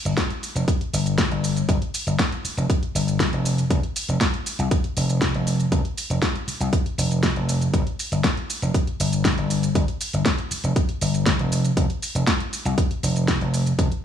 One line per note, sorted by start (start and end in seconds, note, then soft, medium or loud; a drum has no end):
0.05 0.13 G1 loud
0.05 closed hi-hat soft
0.05 shaker soft
0.17 kick loud
0.17 snare loud
0.17 closed hi-hat loud
0.17 shaker soft
0.30 closed hi-hat soft
0.43 open hi-hat medium
0.43 shaker medium
0.55 0.64 F1 loud
0.55 closed hi-hat soft
0.55 shaker soft
0.68 kick loud
0.68 closed hi-hat loud
0.68 shaker soft
0.81 closed hi-hat soft
0.93 1.24 G1 medium
0.93 open hi-hat loud
0.93 shaker medium
1.06 closed hi-hat soft
1.06 shaker soft
1.18 kick loud
1.18 snare loud
1.18 closed hi-hat medium
1.18 shaker soft
1.31 1.62 G1 loud
1.31 closed hi-hat soft
1.44 open hi-hat medium
1.44 shaker medium
1.57 closed hi-hat soft
1.57 shaker soft
1.69 1.77 G1 loud
1.69 kick loud
1.69 closed hi-hat medium
1.69 shaker soft
1.82 closed hi-hat soft
1.94 open hi-hat loud
1.94 shaker medium
2.07 2.15 G1 medium
2.07 closed hi-hat soft
2.07 shaker soft
2.19 kick loud
2.19 snare loud
2.19 closed hi-hat loud
2.19 shaker soft
2.32 closed hi-hat soft
2.45 muted slap bass stroke soft
2.45 open hi-hat loud
2.45 shaker medium
2.57 2.65 F1 loud
2.57 closed hi-hat soft
2.57 shaker soft
2.70 kick loud
2.70 closed hi-hat loud
2.70 shaker soft
2.83 closed hi-hat soft
2.95 3.26 G1 medium
2.95 open hi-hat loud
2.95 shaker medium
3.08 closed hi-hat soft
3.08 shaker soft
3.20 kick loud
3.20 snare loud
3.20 closed hi-hat loud
3.20 shaker soft
3.33 3.64 F1 loud
3.33 closed hi-hat soft
3.45 open hi-hat loud
3.45 shaker medium
3.58 closed hi-hat soft
3.58 shaker soft
3.70 3.79 F1 loud
3.70 kick loud
3.70 closed hi-hat medium
3.70 shaker soft
3.83 closed hi-hat soft
3.96 open hi-hat loud
3.96 shaker medium
4.09 4.17 F1 loud
4.09 closed hi-hat soft
4.09 shaker soft
4.21 kick loud
4.21 snare loud
4.21 closed hi-hat medium
4.21 shaker soft
4.34 closed hi-hat soft
4.46 open hi-hat loud
4.46 shaker medium
4.59 4.67 C2 loud
4.59 closed hi-hat soft
4.59 shaker soft
4.71 kick loud
4.71 closed hi-hat loud
4.71 shaker soft
4.84 closed hi-hat soft
4.97 5.27 F1 medium
4.97 open hi-hat loud
4.97 shaker medium
5.09 closed hi-hat soft
5.09 shaker soft
5.22 kick loud
5.22 snare loud
5.22 closed hi-hat medium
5.22 shaker soft
5.34 5.65 F1 loud
5.34 closed hi-hat soft
5.47 open hi-hat loud
5.47 shaker medium
5.60 closed hi-hat soft
5.60 shaker soft
5.72 5.80 F1 loud
5.72 kick loud
5.72 closed hi-hat medium
5.72 shaker soft
5.85 closed hi-hat soft
5.98 open hi-hat loud
5.98 shaker medium
6.10 6.18 F1 medium
6.10 closed hi-hat soft
6.10 shaker soft
6.22 kick loud
6.22 snare loud
6.22 closed hi-hat medium
6.22 shaker soft
6.36 closed hi-hat soft
6.48 muted slap bass stroke soft
6.48 open hi-hat loud
6.48 shaker medium
6.60 6.69 C2 loud
6.60 closed hi-hat soft
6.60 shaker soft
6.73 kick loud
6.73 closed hi-hat medium
6.73 shaker soft
6.86 closed hi-hat soft
6.98 7.29 F1 medium
6.98 open hi-hat loud
6.98 shaker medium
7.11 closed hi-hat soft
7.11 shaker soft
7.23 kick loud
7.23 snare loud
7.23 closed hi-hat medium
7.23 shaker soft
7.36 7.67 F1 loud
7.36 closed hi-hat soft
7.49 open hi-hat loud
7.49 shaker medium
7.61 closed hi-hat soft
7.61 shaker soft
7.74 7.82 G1 loud
7.74 kick loud
7.74 closed hi-hat medium
7.74 shaker soft
7.87 closed hi-hat soft
7.99 open hi-hat loud
7.99 shaker medium
8.12 8.20 G1 medium
8.12 closed hi-hat soft
8.12 shaker soft
8.24 kick loud
8.24 snare loud
8.24 closed hi-hat medium
8.24 shaker soft
8.37 closed hi-hat soft
8.50 open hi-hat loud
8.50 shaker medium
8.62 8.70 F1 loud
8.62 closed hi-hat soft
8.62 shaker soft
8.74 kick loud
8.74 closed hi-hat medium
8.74 shaker soft
8.87 closed hi-hat soft
9.00 9.31 G1 medium
9.00 open hi-hat loud
9.00 shaker medium
9.13 closed hi-hat soft
9.13 shaker soft
9.25 kick loud
9.25 snare loud
9.25 closed hi-hat medium
9.25 shaker soft
9.38 9.68 G1 loud
9.38 closed hi-hat soft
9.50 open hi-hat loud
9.50 shaker medium
9.63 closed hi-hat soft
9.63 shaker soft
9.75 9.84 G1 loud
9.75 kick loud
9.75 closed hi-hat medium
9.75 shaker soft
9.88 closed hi-hat soft
10.01 open hi-hat loud
10.01 shaker medium
10.13 10.22 G1 medium
10.13 closed hi-hat soft
10.13 shaker medium
10.25 kick loud
10.25 snare loud
10.25 closed hi-hat medium
10.25 shaker soft
10.38 closed hi-hat soft
10.51 muted slap bass stroke soft
10.51 open hi-hat loud
10.51 shaker medium
10.64 10.72 F1 loud
10.64 closed hi-hat soft
10.64 shaker soft
10.76 kick loud
10.76 closed hi-hat medium
10.76 shaker soft
10.89 closed hi-hat soft
11.01 11.32 G1 medium
11.01 open hi-hat loud
11.01 shaker medium
11.14 closed hi-hat soft
11.14 shaker soft
11.26 kick loud
11.26 snare loud
11.26 closed hi-hat medium
11.26 shaker soft
11.39 11.70 F1 loud
11.39 closed hi-hat soft
11.52 open hi-hat medium
11.52 shaker medium
11.65 closed hi-hat soft
11.65 shaker soft
11.77 11.85 F1 loud
11.77 kick loud
11.77 closed hi-hat loud
11.77 shaker soft
11.90 closed hi-hat soft
12.02 open hi-hat loud
12.02 shaker medium
12.15 12.23 F1 loud
12.15 closed hi-hat soft
12.15 shaker soft
12.27 kick loud
12.27 snare loud
12.27 closed hi-hat medium
12.27 shaker soft
12.40 closed hi-hat soft
12.53 open hi-hat medium
12.53 shaker medium
12.65 12.74 C2 loud
12.65 closed hi-hat soft
12.65 shaker medium
12.78 kick loud
12.78 closed hi-hat loud
12.78 shaker soft
12.91 closed hi-hat soft
13.03 13.34 F1 medium
13.03 open hi-hat loud
13.03 shaker medium
13.16 closed hi-hat soft
13.16 shaker soft
13.28 kick loud
13.28 snare loud
13.28 closed hi-hat loud
13.28 shaker soft
13.41 13.72 F1 loud
13.41 closed hi-hat soft
13.54 open hi-hat medium
13.54 shaker medium
13.66 closed hi-hat soft
13.66 shaker soft
13.79 13.87 F1 loud
13.79 kick loud
13.79 closed hi-hat loud
13.79 shaker soft
13.92 closed hi-hat soft